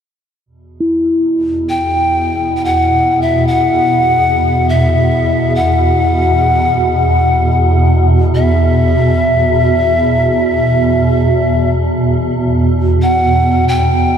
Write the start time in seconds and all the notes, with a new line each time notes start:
0.46 E2 B2
0.80 E4
1.69 G5
2.56 G5
2.65 F#5
3.22 E5
3.47 F#5
4.69 E5
5.55 F#5
8.35 E5
13.02 F#5
13.68 G5